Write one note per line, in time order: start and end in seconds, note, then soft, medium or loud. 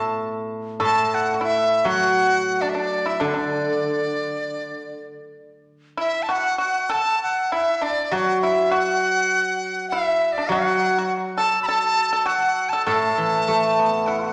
0.00 0.79 A2 medium
0.80 2.60 A2 medium
0.80 1.30 A4 medium
0.84 1.16 A5 loud
1.14 1.43 F#5 medium
1.34 1.40 F#4 medium
1.41 1.83 E4 medium
1.41 1.89 E5 loud
1.84 3.66 F#3 medium
1.84 2.57 F#4 medium
1.84 2.63 F#5 loud
2.61 2.74 D4 medium
2.61 2.71 D5 medium
2.69 2.77 E5 medium
2.75 3.04 D4 medium
2.75 3.09 D5 medium
3.06 3.19 E4 medium
3.06 3.24 E5 medium
3.20 5.05 D3 medium
3.20 3.32 D4 medium
3.20 3.30 D5 medium
3.29 3.36 E5 medium
3.34 5.01 D4 medium
3.34 5.06 D5 medium
5.97 6.27 E4 medium
5.97 6.24 E5 medium
6.23 6.33 A5 medium
6.29 6.57 F#4 medium
6.29 6.58 F#5 medium
6.58 6.88 F#4 medium
6.58 6.93 F#5 medium
6.89 7.48 A4 medium
6.89 7.23 A5 loud
7.23 7.53 F#5 medium
7.52 7.81 E4 medium
7.52 7.85 E5 medium
7.81 8.10 D4 medium
7.81 8.14 D5 medium
8.11 9.91 F#3 medium
8.11 8.40 F#4 medium
8.11 8.41 F#5 loud
8.42 8.71 E4 medium
8.42 8.72 E5 medium
8.71 9.87 F#4 medium
8.71 9.89 F#5 loud
9.90 10.34 E4 medium
9.90 10.34 E5 medium
10.32 10.50 D5 medium
10.38 10.51 D4 medium
10.49 12.27 F#3 medium
10.49 10.96 F#4 medium
10.49 11.13 F#5 loud
10.98 11.13 F#4 medium
11.37 11.66 A4 medium
11.37 11.60 A5 loud
11.63 12.28 A5 loud
11.63 11.68 B5 medium
11.69 12.10 A4 medium
12.13 12.27 A4 medium
12.26 12.69 F#4 medium
12.26 12.71 F#5 loud
12.69 12.86 A4 medium
12.69 12.85 A5 loud
12.86 14.33 A2 medium
12.86 14.04 A4 medium
12.86 14.08 A5 loud
13.18 14.33 E3 soft
13.48 14.33 A3 medium
13.79 14.33 B3 soft
14.06 14.26 E4 medium
14.06 14.33 F#5 medium
14.26 14.33 F#4 medium